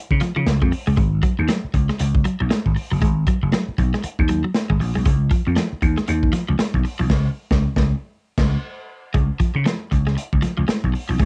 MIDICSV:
0, 0, Header, 1, 6, 480
1, 0, Start_track
1, 0, Tempo, 511073
1, 915, Time_signature, 4, 2, 24, 8
1, 10567, End_track
2, 0, Start_track
2, 0, Title_t, "Clean electric guitar"
2, 0, Program_c, 0, 27
2, 198, Note_on_c, 0, 53, 91
2, 292, Note_off_c, 0, 53, 0
2, 339, Note_on_c, 0, 53, 75
2, 402, Note_off_c, 0, 53, 0
2, 581, Note_on_c, 0, 56, 62
2, 643, Note_off_c, 0, 56, 0
2, 819, Note_on_c, 0, 56, 82
2, 881, Note_off_c, 0, 56, 0
2, 912, Note_on_c, 0, 56, 87
2, 1007, Note_off_c, 0, 56, 0
2, 1156, Note_on_c, 0, 54, 81
2, 1249, Note_off_c, 0, 54, 0
2, 1398, Note_on_c, 0, 54, 80
2, 1490, Note_off_c, 0, 54, 0
2, 1779, Note_on_c, 0, 56, 78
2, 1841, Note_off_c, 0, 56, 0
2, 2115, Note_on_c, 0, 54, 93
2, 2208, Note_off_c, 0, 54, 0
2, 2257, Note_on_c, 0, 54, 75
2, 2319, Note_off_c, 0, 54, 0
2, 2352, Note_on_c, 0, 56, 85
2, 2446, Note_off_c, 0, 56, 0
2, 2738, Note_on_c, 0, 54, 72
2, 2799, Note_off_c, 0, 54, 0
2, 2835, Note_on_c, 0, 56, 85
2, 2927, Note_off_c, 0, 56, 0
2, 3080, Note_on_c, 0, 54, 84
2, 3170, Note_off_c, 0, 54, 0
2, 3317, Note_on_c, 0, 54, 81
2, 3408, Note_off_c, 0, 54, 0
2, 3701, Note_on_c, 0, 56, 72
2, 3760, Note_off_c, 0, 56, 0
2, 4029, Note_on_c, 0, 54, 90
2, 4123, Note_off_c, 0, 54, 0
2, 4172, Note_on_c, 0, 54, 70
2, 4234, Note_off_c, 0, 54, 0
2, 4412, Note_on_c, 0, 56, 69
2, 4474, Note_off_c, 0, 56, 0
2, 4652, Note_on_c, 0, 56, 71
2, 4714, Note_off_c, 0, 56, 0
2, 4750, Note_on_c, 0, 56, 89
2, 4843, Note_off_c, 0, 56, 0
2, 4987, Note_on_c, 0, 53, 78
2, 5081, Note_off_c, 0, 53, 0
2, 5227, Note_on_c, 0, 53, 80
2, 5321, Note_off_c, 0, 53, 0
2, 5612, Note_on_c, 0, 56, 73
2, 5674, Note_off_c, 0, 56, 0
2, 5944, Note_on_c, 0, 53, 91
2, 6038, Note_off_c, 0, 53, 0
2, 6091, Note_on_c, 0, 53, 79
2, 6153, Note_off_c, 0, 53, 0
2, 6191, Note_on_c, 0, 56, 82
2, 6283, Note_off_c, 0, 56, 0
2, 6569, Note_on_c, 0, 53, 71
2, 6632, Note_off_c, 0, 53, 0
2, 8586, Note_on_c, 0, 56, 79
2, 8682, Note_off_c, 0, 56, 0
2, 8827, Note_on_c, 0, 53, 79
2, 8922, Note_off_c, 0, 53, 0
2, 9069, Note_on_c, 0, 53, 83
2, 9164, Note_off_c, 0, 53, 0
2, 9455, Note_on_c, 0, 56, 67
2, 9518, Note_off_c, 0, 56, 0
2, 9790, Note_on_c, 0, 53, 90
2, 9885, Note_off_c, 0, 53, 0
2, 9931, Note_on_c, 0, 53, 69
2, 9996, Note_off_c, 0, 53, 0
2, 10030, Note_on_c, 0, 56, 76
2, 10126, Note_off_c, 0, 56, 0
2, 10416, Note_on_c, 0, 53, 72
2, 10480, Note_off_c, 0, 53, 0
2, 10514, Note_on_c, 0, 56, 86
2, 10567, Note_off_c, 0, 56, 0
2, 10567, End_track
3, 0, Start_track
3, 0, Title_t, "Slap bass"
3, 0, Program_c, 1, 36
3, 104, Note_on_c, 1, 49, 80
3, 188, Note_off_c, 1, 49, 0
3, 342, Note_on_c, 1, 49, 98
3, 427, Note_off_c, 1, 49, 0
3, 437, Note_on_c, 1, 37, 84
3, 565, Note_off_c, 1, 37, 0
3, 580, Note_on_c, 1, 41, 91
3, 666, Note_off_c, 1, 41, 0
3, 822, Note_on_c, 1, 37, 93
3, 906, Note_off_c, 1, 37, 0
3, 919, Note_on_c, 1, 32, 111
3, 1131, Note_off_c, 1, 32, 0
3, 1304, Note_on_c, 1, 39, 86
3, 1387, Note_off_c, 1, 39, 0
3, 1636, Note_on_c, 1, 37, 85
3, 1763, Note_off_c, 1, 37, 0
3, 1881, Note_on_c, 1, 37, 105
3, 2091, Note_off_c, 1, 37, 0
3, 2264, Note_on_c, 1, 35, 87
3, 2345, Note_off_c, 1, 35, 0
3, 2499, Note_on_c, 1, 32, 82
3, 2583, Note_off_c, 1, 32, 0
3, 2743, Note_on_c, 1, 30, 91
3, 2824, Note_off_c, 1, 30, 0
3, 2835, Note_on_c, 1, 32, 109
3, 3047, Note_off_c, 1, 32, 0
3, 3218, Note_on_c, 1, 30, 83
3, 3301, Note_off_c, 1, 30, 0
3, 3555, Note_on_c, 1, 35, 88
3, 3680, Note_off_c, 1, 35, 0
3, 3935, Note_on_c, 1, 39, 82
3, 4148, Note_off_c, 1, 39, 0
3, 4414, Note_on_c, 1, 32, 84
3, 4498, Note_off_c, 1, 32, 0
3, 4511, Note_on_c, 1, 34, 85
3, 4638, Note_off_c, 1, 34, 0
3, 4659, Note_on_c, 1, 35, 89
3, 4741, Note_off_c, 1, 35, 0
3, 4752, Note_on_c, 1, 37, 110
3, 4964, Note_off_c, 1, 37, 0
3, 5138, Note_on_c, 1, 41, 82
3, 5220, Note_off_c, 1, 41, 0
3, 5468, Note_on_c, 1, 39, 92
3, 5596, Note_off_c, 1, 39, 0
3, 5714, Note_on_c, 1, 39, 100
3, 5925, Note_off_c, 1, 39, 0
3, 6098, Note_on_c, 1, 37, 88
3, 6180, Note_off_c, 1, 37, 0
3, 6333, Note_on_c, 1, 35, 82
3, 6418, Note_off_c, 1, 35, 0
3, 6577, Note_on_c, 1, 35, 88
3, 6664, Note_off_c, 1, 35, 0
3, 6669, Note_on_c, 1, 37, 113
3, 6839, Note_off_c, 1, 37, 0
3, 7053, Note_on_c, 1, 37, 99
3, 7207, Note_off_c, 1, 37, 0
3, 7294, Note_on_c, 1, 37, 111
3, 7448, Note_off_c, 1, 37, 0
3, 7870, Note_on_c, 1, 37, 86
3, 8040, Note_off_c, 1, 37, 0
3, 8592, Note_on_c, 1, 37, 102
3, 8720, Note_off_c, 1, 37, 0
3, 8974, Note_on_c, 1, 49, 85
3, 9060, Note_off_c, 1, 49, 0
3, 9316, Note_on_c, 1, 37, 84
3, 9530, Note_off_c, 1, 37, 0
3, 9700, Note_on_c, 1, 37, 74
3, 9785, Note_off_c, 1, 37, 0
3, 9940, Note_on_c, 1, 37, 82
3, 10026, Note_off_c, 1, 37, 0
3, 10183, Note_on_c, 1, 35, 79
3, 10268, Note_off_c, 1, 35, 0
3, 10423, Note_on_c, 1, 35, 87
3, 10508, Note_off_c, 1, 35, 0
3, 10518, Note_on_c, 1, 37, 108
3, 10567, Note_off_c, 1, 37, 0
3, 10567, End_track
4, 0, Start_track
4, 0, Title_t, "Muted clean electric guitar strokes"
4, 678, Note_on_c, 9, 29, 43
4, 772, Note_off_c, 9, 29, 0
4, 1304, Note_on_c, 9, 29, 40
4, 1398, Note_off_c, 9, 29, 0
4, 1634, Note_on_c, 9, 29, 48
4, 1728, Note_off_c, 9, 29, 0
4, 1880, Note_on_c, 9, 29, 47
4, 1974, Note_off_c, 9, 29, 0
4, 2595, Note_on_c, 9, 29, 43
4, 2689, Note_off_c, 9, 29, 0
4, 3221, Note_on_c, 9, 29, 43
4, 3315, Note_off_c, 9, 29, 0
4, 3554, Note_on_c, 9, 29, 47
4, 3648, Note_off_c, 9, 29, 0
4, 3792, Note_on_c, 9, 29, 43
4, 3886, Note_off_c, 9, 29, 0
4, 4510, Note_on_c, 9, 29, 44
4, 4604, Note_off_c, 9, 29, 0
4, 5134, Note_on_c, 9, 29, 46
4, 5228, Note_off_c, 9, 29, 0
4, 5468, Note_on_c, 9, 29, 50
4, 5562, Note_off_c, 9, 29, 0
4, 5712, Note_on_c, 9, 29, 45
4, 5806, Note_off_c, 9, 29, 0
4, 6432, Note_on_c, 9, 29, 40
4, 6526, Note_off_c, 9, 29, 0
4, 8967, Note_on_c, 9, 29, 42
4, 9061, Note_off_c, 9, 29, 0
4, 9310, Note_on_c, 9, 29, 49
4, 9403, Note_off_c, 9, 29, 0
4, 9549, Note_on_c, 9, 29, 47
4, 9643, Note_off_c, 9, 29, 0
4, 10272, Note_on_c, 9, 29, 44
4, 10365, Note_off_c, 9, 29, 0
4, 10567, End_track
5, 0, Start_track
5, 0, Title_t, "Muted slap bass strokes"
5, 1544, Note_on_c, 9, 29, 43
5, 1638, Note_off_c, 9, 29, 0
5, 2363, Note_on_c, 9, 29, 39
5, 2457, Note_off_c, 9, 29, 0
5, 3460, Note_on_c, 9, 29, 47
5, 3554, Note_off_c, 9, 29, 0
5, 3792, Note_on_c, 9, 29, 50
5, 3886, Note_off_c, 9, 29, 0
5, 5378, Note_on_c, 9, 29, 47
5, 5472, Note_off_c, 9, 29, 0
5, 6196, Note_on_c, 9, 29, 47
5, 6289, Note_off_c, 9, 29, 0
5, 8828, Note_on_c, 9, 29, 42
5, 8922, Note_off_c, 9, 29, 0
5, 10039, Note_on_c, 9, 29, 45
5, 10133, Note_off_c, 9, 29, 0
5, 10567, End_track
6, 0, Start_track
6, 0, Title_t, "Drums"
6, 100, Note_on_c, 9, 36, 91
6, 190, Note_on_c, 9, 42, 83
6, 194, Note_off_c, 9, 36, 0
6, 201, Note_on_c, 9, 38, 38
6, 284, Note_off_c, 9, 42, 0
6, 295, Note_off_c, 9, 38, 0
6, 437, Note_on_c, 9, 38, 104
6, 439, Note_on_c, 9, 42, 84
6, 531, Note_off_c, 9, 38, 0
6, 533, Note_off_c, 9, 42, 0
6, 579, Note_on_c, 9, 36, 84
6, 672, Note_off_c, 9, 36, 0
6, 680, Note_on_c, 9, 46, 93
6, 774, Note_off_c, 9, 46, 0
6, 916, Note_on_c, 9, 36, 117
6, 917, Note_on_c, 9, 42, 80
6, 1009, Note_off_c, 9, 36, 0
6, 1011, Note_off_c, 9, 42, 0
6, 1153, Note_on_c, 9, 36, 100
6, 1153, Note_on_c, 9, 42, 79
6, 1247, Note_off_c, 9, 36, 0
6, 1247, Note_off_c, 9, 42, 0
6, 1392, Note_on_c, 9, 42, 92
6, 1396, Note_on_c, 9, 38, 94
6, 1485, Note_off_c, 9, 42, 0
6, 1490, Note_off_c, 9, 38, 0
6, 1633, Note_on_c, 9, 36, 94
6, 1636, Note_on_c, 9, 42, 71
6, 1727, Note_off_c, 9, 36, 0
6, 1730, Note_off_c, 9, 42, 0
6, 1776, Note_on_c, 9, 38, 41
6, 1870, Note_off_c, 9, 38, 0
6, 1873, Note_on_c, 9, 42, 106
6, 1967, Note_off_c, 9, 42, 0
6, 2017, Note_on_c, 9, 36, 99
6, 2110, Note_on_c, 9, 42, 76
6, 2111, Note_off_c, 9, 36, 0
6, 2204, Note_off_c, 9, 42, 0
6, 2356, Note_on_c, 9, 38, 113
6, 2358, Note_on_c, 9, 42, 91
6, 2450, Note_off_c, 9, 38, 0
6, 2452, Note_off_c, 9, 42, 0
6, 2497, Note_on_c, 9, 36, 78
6, 2591, Note_off_c, 9, 36, 0
6, 2597, Note_on_c, 9, 46, 92
6, 2691, Note_off_c, 9, 46, 0
6, 2833, Note_on_c, 9, 36, 117
6, 2838, Note_on_c, 9, 42, 84
6, 2927, Note_off_c, 9, 36, 0
6, 2931, Note_off_c, 9, 42, 0
6, 3069, Note_on_c, 9, 36, 98
6, 3069, Note_on_c, 9, 42, 80
6, 3163, Note_off_c, 9, 36, 0
6, 3163, Note_off_c, 9, 42, 0
6, 3305, Note_on_c, 9, 42, 75
6, 3310, Note_on_c, 9, 38, 95
6, 3399, Note_off_c, 9, 42, 0
6, 3404, Note_off_c, 9, 38, 0
6, 3552, Note_on_c, 9, 36, 100
6, 3557, Note_on_c, 9, 42, 76
6, 3646, Note_off_c, 9, 36, 0
6, 3651, Note_off_c, 9, 42, 0
6, 3696, Note_on_c, 9, 38, 38
6, 3788, Note_on_c, 9, 42, 101
6, 3790, Note_off_c, 9, 38, 0
6, 3882, Note_off_c, 9, 42, 0
6, 3934, Note_on_c, 9, 36, 98
6, 4023, Note_on_c, 9, 42, 85
6, 4028, Note_off_c, 9, 36, 0
6, 4116, Note_off_c, 9, 42, 0
6, 4269, Note_on_c, 9, 38, 114
6, 4270, Note_on_c, 9, 42, 84
6, 4363, Note_off_c, 9, 38, 0
6, 4364, Note_off_c, 9, 42, 0
6, 4413, Note_on_c, 9, 36, 78
6, 4507, Note_off_c, 9, 36, 0
6, 4515, Note_on_c, 9, 46, 84
6, 4609, Note_off_c, 9, 46, 0
6, 4748, Note_on_c, 9, 42, 91
6, 4749, Note_on_c, 9, 36, 127
6, 4842, Note_off_c, 9, 42, 0
6, 4843, Note_off_c, 9, 36, 0
6, 4984, Note_on_c, 9, 42, 86
6, 4985, Note_on_c, 9, 36, 100
6, 5078, Note_off_c, 9, 42, 0
6, 5079, Note_off_c, 9, 36, 0
6, 5220, Note_on_c, 9, 42, 75
6, 5225, Note_on_c, 9, 38, 89
6, 5314, Note_off_c, 9, 42, 0
6, 5319, Note_off_c, 9, 38, 0
6, 5467, Note_on_c, 9, 36, 87
6, 5468, Note_on_c, 9, 42, 66
6, 5561, Note_off_c, 9, 36, 0
6, 5562, Note_off_c, 9, 42, 0
6, 5608, Note_on_c, 9, 38, 43
6, 5702, Note_off_c, 9, 38, 0
6, 5705, Note_on_c, 9, 42, 98
6, 5799, Note_off_c, 9, 42, 0
6, 5850, Note_on_c, 9, 36, 91
6, 5943, Note_on_c, 9, 42, 81
6, 5944, Note_off_c, 9, 36, 0
6, 5954, Note_on_c, 9, 38, 37
6, 6037, Note_off_c, 9, 42, 0
6, 6048, Note_off_c, 9, 38, 0
6, 6188, Note_on_c, 9, 38, 101
6, 6189, Note_on_c, 9, 42, 94
6, 6282, Note_off_c, 9, 38, 0
6, 6283, Note_off_c, 9, 42, 0
6, 6331, Note_on_c, 9, 36, 79
6, 6425, Note_off_c, 9, 36, 0
6, 6432, Note_on_c, 9, 46, 86
6, 6526, Note_off_c, 9, 46, 0
6, 6664, Note_on_c, 9, 49, 78
6, 6666, Note_on_c, 9, 38, 98
6, 6667, Note_on_c, 9, 36, 103
6, 6758, Note_off_c, 9, 49, 0
6, 6760, Note_off_c, 9, 36, 0
6, 6760, Note_off_c, 9, 38, 0
6, 7051, Note_on_c, 9, 36, 105
6, 7052, Note_on_c, 9, 38, 104
6, 7145, Note_off_c, 9, 36, 0
6, 7146, Note_off_c, 9, 38, 0
6, 7291, Note_on_c, 9, 36, 106
6, 7292, Note_on_c, 9, 38, 99
6, 7385, Note_off_c, 9, 36, 0
6, 7386, Note_off_c, 9, 38, 0
6, 7867, Note_on_c, 9, 36, 117
6, 7867, Note_on_c, 9, 49, 84
6, 7869, Note_on_c, 9, 38, 104
6, 7961, Note_off_c, 9, 36, 0
6, 7961, Note_off_c, 9, 49, 0
6, 7963, Note_off_c, 9, 38, 0
6, 8589, Note_on_c, 9, 36, 122
6, 8590, Note_on_c, 9, 42, 78
6, 8683, Note_off_c, 9, 36, 0
6, 8684, Note_off_c, 9, 42, 0
6, 8826, Note_on_c, 9, 42, 75
6, 8827, Note_on_c, 9, 36, 97
6, 8920, Note_off_c, 9, 42, 0
6, 8921, Note_off_c, 9, 36, 0
6, 9069, Note_on_c, 9, 42, 72
6, 9074, Note_on_c, 9, 38, 96
6, 9163, Note_off_c, 9, 42, 0
6, 9168, Note_off_c, 9, 38, 0
6, 9314, Note_on_c, 9, 36, 88
6, 9318, Note_on_c, 9, 42, 73
6, 9408, Note_off_c, 9, 36, 0
6, 9412, Note_off_c, 9, 42, 0
6, 9461, Note_on_c, 9, 38, 39
6, 9554, Note_off_c, 9, 38, 0
6, 9556, Note_on_c, 9, 42, 102
6, 9650, Note_off_c, 9, 42, 0
6, 9699, Note_on_c, 9, 36, 94
6, 9790, Note_on_c, 9, 42, 75
6, 9793, Note_off_c, 9, 36, 0
6, 9800, Note_on_c, 9, 38, 34
6, 9884, Note_off_c, 9, 42, 0
6, 9894, Note_off_c, 9, 38, 0
6, 10038, Note_on_c, 9, 38, 106
6, 10039, Note_on_c, 9, 42, 86
6, 10132, Note_off_c, 9, 38, 0
6, 10133, Note_off_c, 9, 42, 0
6, 10180, Note_on_c, 9, 36, 74
6, 10274, Note_off_c, 9, 36, 0
6, 10283, Note_on_c, 9, 46, 86
6, 10377, Note_off_c, 9, 46, 0
6, 10516, Note_on_c, 9, 36, 127
6, 10518, Note_on_c, 9, 42, 79
6, 10567, Note_off_c, 9, 36, 0
6, 10567, Note_off_c, 9, 42, 0
6, 10567, End_track
0, 0, End_of_file